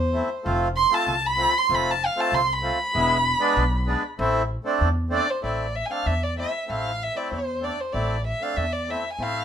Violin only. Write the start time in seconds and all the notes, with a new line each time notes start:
Already playing: C5
0.76 C6
0.94 A5
1.26 B5
1.58 C6
1.75 B5
1.91 A5
2.06 F5
2.20 A5
2.35 C6
2.53 B5
5.15 D5
5.30 C5
5.45 D5
5.75 E5
5.86 G#5
5.91 F5
6.06 E5
6.23 D5
6.39 E5
6.72 F5
7.03 E5
7.17 D5
7.33 C5
7.64 D5
7.80 C5
7.93 D5
8.27 E5
8.42 F5
8.56 E5
8.73 D5
8.90 E5
9.13 G#5
9.23 F5